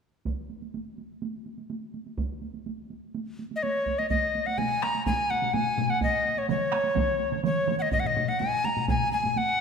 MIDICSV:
0, 0, Header, 1, 3, 480
1, 0, Start_track
1, 0, Tempo, 478851
1, 261, Time_signature, 4, 2, 24, 8
1, 9629, End_track
2, 0, Start_track
2, 0, Title_t, "Recorder"
2, 0, Program_c, 0, 74
2, 3567, Note_on_c, 0, 75, 49
2, 3636, Note_on_c, 0, 73, 68
2, 3651, Note_off_c, 0, 75, 0
2, 3995, Note_on_c, 0, 75, 66
2, 4010, Note_off_c, 0, 73, 0
2, 4100, Note_off_c, 0, 75, 0
2, 4106, Note_on_c, 0, 75, 76
2, 4474, Note_on_c, 0, 78, 73
2, 4489, Note_off_c, 0, 75, 0
2, 4590, Note_on_c, 0, 80, 83
2, 4605, Note_off_c, 0, 78, 0
2, 4838, Note_on_c, 0, 82, 78
2, 4853, Note_off_c, 0, 80, 0
2, 5070, Note_off_c, 0, 82, 0
2, 5076, Note_on_c, 0, 80, 80
2, 5316, Note_on_c, 0, 78, 72
2, 5331, Note_off_c, 0, 80, 0
2, 5548, Note_on_c, 0, 80, 87
2, 5563, Note_off_c, 0, 78, 0
2, 5914, Note_on_c, 0, 78, 66
2, 5929, Note_off_c, 0, 80, 0
2, 6031, Note_off_c, 0, 78, 0
2, 6047, Note_on_c, 0, 75, 83
2, 6397, Note_on_c, 0, 73, 69
2, 6412, Note_off_c, 0, 75, 0
2, 6506, Note_off_c, 0, 73, 0
2, 6512, Note_on_c, 0, 73, 75
2, 7429, Note_off_c, 0, 73, 0
2, 7472, Note_on_c, 0, 73, 77
2, 7777, Note_off_c, 0, 73, 0
2, 7808, Note_on_c, 0, 78, 55
2, 7834, Note_on_c, 0, 75, 67
2, 7849, Note_off_c, 0, 78, 0
2, 7935, Note_off_c, 0, 75, 0
2, 7941, Note_on_c, 0, 75, 70
2, 8016, Note_on_c, 0, 78, 65
2, 8031, Note_off_c, 0, 75, 0
2, 8086, Note_on_c, 0, 75, 77
2, 8101, Note_off_c, 0, 78, 0
2, 8306, Note_on_c, 0, 78, 73
2, 8321, Note_off_c, 0, 75, 0
2, 8413, Note_on_c, 0, 80, 76
2, 8428, Note_off_c, 0, 78, 0
2, 8668, Note_on_c, 0, 82, 71
2, 8683, Note_off_c, 0, 80, 0
2, 8906, Note_off_c, 0, 82, 0
2, 8914, Note_on_c, 0, 80, 75
2, 9133, Note_off_c, 0, 80, 0
2, 9147, Note_on_c, 0, 80, 72
2, 9397, Note_on_c, 0, 78, 81
2, 9412, Note_off_c, 0, 80, 0
2, 9629, Note_off_c, 0, 78, 0
2, 9629, End_track
3, 0, Start_track
3, 0, Title_t, "Taiko and cinematic ensemble drums"
3, 254, Note_on_c, 9, 48, 49
3, 259, Note_on_c, 9, 41, 72
3, 354, Note_off_c, 9, 48, 0
3, 359, Note_off_c, 9, 41, 0
3, 497, Note_on_c, 9, 48, 38
3, 597, Note_off_c, 9, 48, 0
3, 622, Note_on_c, 9, 48, 36
3, 723, Note_off_c, 9, 48, 0
3, 742, Note_on_c, 9, 48, 49
3, 843, Note_off_c, 9, 48, 0
3, 982, Note_on_c, 9, 48, 40
3, 1082, Note_off_c, 9, 48, 0
3, 1222, Note_on_c, 9, 48, 55
3, 1322, Note_off_c, 9, 48, 0
3, 1461, Note_on_c, 9, 48, 37
3, 1561, Note_off_c, 9, 48, 0
3, 1581, Note_on_c, 9, 48, 37
3, 1682, Note_off_c, 9, 48, 0
3, 1702, Note_on_c, 9, 48, 51
3, 1802, Note_off_c, 9, 48, 0
3, 1943, Note_on_c, 9, 48, 39
3, 2043, Note_off_c, 9, 48, 0
3, 2068, Note_on_c, 9, 48, 36
3, 2169, Note_off_c, 9, 48, 0
3, 2181, Note_on_c, 9, 41, 76
3, 2181, Note_on_c, 9, 48, 50
3, 2281, Note_off_c, 9, 41, 0
3, 2281, Note_off_c, 9, 48, 0
3, 2422, Note_on_c, 9, 48, 38
3, 2522, Note_off_c, 9, 48, 0
3, 2544, Note_on_c, 9, 48, 35
3, 2644, Note_off_c, 9, 48, 0
3, 2668, Note_on_c, 9, 48, 48
3, 2769, Note_off_c, 9, 48, 0
3, 2908, Note_on_c, 9, 48, 41
3, 3008, Note_off_c, 9, 48, 0
3, 3152, Note_on_c, 9, 48, 55
3, 3253, Note_off_c, 9, 48, 0
3, 3398, Note_on_c, 9, 48, 42
3, 3498, Note_off_c, 9, 48, 0
3, 3519, Note_on_c, 9, 48, 44
3, 3620, Note_off_c, 9, 48, 0
3, 3644, Note_on_c, 9, 48, 52
3, 3744, Note_off_c, 9, 48, 0
3, 3870, Note_on_c, 9, 41, 52
3, 3882, Note_on_c, 9, 48, 49
3, 3971, Note_off_c, 9, 41, 0
3, 3982, Note_off_c, 9, 48, 0
3, 4004, Note_on_c, 9, 48, 48
3, 4104, Note_off_c, 9, 48, 0
3, 4113, Note_on_c, 9, 41, 76
3, 4119, Note_on_c, 9, 48, 61
3, 4213, Note_off_c, 9, 41, 0
3, 4220, Note_off_c, 9, 48, 0
3, 4360, Note_on_c, 9, 48, 48
3, 4460, Note_off_c, 9, 48, 0
3, 4484, Note_on_c, 9, 48, 44
3, 4585, Note_off_c, 9, 48, 0
3, 4594, Note_on_c, 9, 45, 75
3, 4599, Note_on_c, 9, 48, 67
3, 4694, Note_off_c, 9, 45, 0
3, 4700, Note_off_c, 9, 48, 0
3, 4834, Note_on_c, 9, 37, 60
3, 4843, Note_on_c, 9, 48, 51
3, 4934, Note_off_c, 9, 37, 0
3, 4943, Note_off_c, 9, 48, 0
3, 4958, Note_on_c, 9, 48, 50
3, 5058, Note_off_c, 9, 48, 0
3, 5074, Note_on_c, 9, 41, 75
3, 5077, Note_on_c, 9, 45, 84
3, 5080, Note_on_c, 9, 48, 65
3, 5174, Note_off_c, 9, 41, 0
3, 5177, Note_off_c, 9, 45, 0
3, 5181, Note_off_c, 9, 48, 0
3, 5321, Note_on_c, 9, 48, 49
3, 5421, Note_off_c, 9, 48, 0
3, 5432, Note_on_c, 9, 48, 47
3, 5436, Note_on_c, 9, 45, 57
3, 5532, Note_off_c, 9, 48, 0
3, 5536, Note_off_c, 9, 45, 0
3, 5554, Note_on_c, 9, 45, 83
3, 5555, Note_on_c, 9, 48, 71
3, 5654, Note_off_c, 9, 45, 0
3, 5655, Note_off_c, 9, 48, 0
3, 5790, Note_on_c, 9, 45, 82
3, 5792, Note_on_c, 9, 48, 56
3, 5890, Note_off_c, 9, 45, 0
3, 5893, Note_off_c, 9, 48, 0
3, 5911, Note_on_c, 9, 48, 47
3, 6011, Note_off_c, 9, 48, 0
3, 6024, Note_on_c, 9, 48, 66
3, 6025, Note_on_c, 9, 41, 78
3, 6124, Note_off_c, 9, 48, 0
3, 6125, Note_off_c, 9, 41, 0
3, 6268, Note_on_c, 9, 48, 45
3, 6368, Note_off_c, 9, 48, 0
3, 6384, Note_on_c, 9, 48, 44
3, 6484, Note_off_c, 9, 48, 0
3, 6502, Note_on_c, 9, 48, 59
3, 6507, Note_on_c, 9, 47, 86
3, 6602, Note_off_c, 9, 48, 0
3, 6607, Note_off_c, 9, 47, 0
3, 6736, Note_on_c, 9, 37, 66
3, 6742, Note_on_c, 9, 48, 47
3, 6836, Note_off_c, 9, 37, 0
3, 6842, Note_off_c, 9, 48, 0
3, 6853, Note_on_c, 9, 48, 48
3, 6953, Note_off_c, 9, 48, 0
3, 6969, Note_on_c, 9, 48, 66
3, 6971, Note_on_c, 9, 47, 80
3, 6983, Note_on_c, 9, 41, 85
3, 7069, Note_off_c, 9, 48, 0
3, 7071, Note_off_c, 9, 47, 0
3, 7083, Note_off_c, 9, 41, 0
3, 7212, Note_on_c, 9, 48, 49
3, 7312, Note_off_c, 9, 48, 0
3, 7338, Note_on_c, 9, 47, 63
3, 7338, Note_on_c, 9, 48, 43
3, 7438, Note_off_c, 9, 47, 0
3, 7438, Note_off_c, 9, 48, 0
3, 7454, Note_on_c, 9, 48, 63
3, 7455, Note_on_c, 9, 47, 85
3, 7554, Note_off_c, 9, 48, 0
3, 7555, Note_off_c, 9, 47, 0
3, 7696, Note_on_c, 9, 47, 87
3, 7699, Note_on_c, 9, 48, 52
3, 7796, Note_off_c, 9, 47, 0
3, 7799, Note_off_c, 9, 48, 0
3, 7815, Note_on_c, 9, 48, 45
3, 7915, Note_off_c, 9, 48, 0
3, 7934, Note_on_c, 9, 41, 82
3, 7939, Note_on_c, 9, 48, 57
3, 7943, Note_on_c, 9, 45, 66
3, 8035, Note_off_c, 9, 41, 0
3, 8040, Note_off_c, 9, 48, 0
3, 8043, Note_off_c, 9, 45, 0
3, 8065, Note_on_c, 9, 45, 56
3, 8165, Note_off_c, 9, 45, 0
3, 8184, Note_on_c, 9, 48, 46
3, 8185, Note_on_c, 9, 45, 79
3, 8284, Note_off_c, 9, 48, 0
3, 8285, Note_off_c, 9, 45, 0
3, 8302, Note_on_c, 9, 48, 45
3, 8403, Note_off_c, 9, 48, 0
3, 8420, Note_on_c, 9, 48, 59
3, 8431, Note_on_c, 9, 45, 84
3, 8520, Note_off_c, 9, 48, 0
3, 8531, Note_off_c, 9, 45, 0
3, 8663, Note_on_c, 9, 45, 60
3, 8666, Note_on_c, 9, 48, 46
3, 8763, Note_off_c, 9, 45, 0
3, 8766, Note_off_c, 9, 48, 0
3, 8788, Note_on_c, 9, 45, 55
3, 8788, Note_on_c, 9, 48, 45
3, 8888, Note_off_c, 9, 45, 0
3, 8888, Note_off_c, 9, 48, 0
3, 8903, Note_on_c, 9, 41, 88
3, 8904, Note_on_c, 9, 48, 55
3, 8916, Note_on_c, 9, 45, 86
3, 9003, Note_off_c, 9, 41, 0
3, 9004, Note_off_c, 9, 48, 0
3, 9016, Note_off_c, 9, 45, 0
3, 9143, Note_on_c, 9, 48, 48
3, 9243, Note_off_c, 9, 48, 0
3, 9256, Note_on_c, 9, 48, 50
3, 9271, Note_on_c, 9, 45, 58
3, 9357, Note_off_c, 9, 48, 0
3, 9372, Note_off_c, 9, 45, 0
3, 9384, Note_on_c, 9, 48, 60
3, 9484, Note_off_c, 9, 48, 0
3, 9629, End_track
0, 0, End_of_file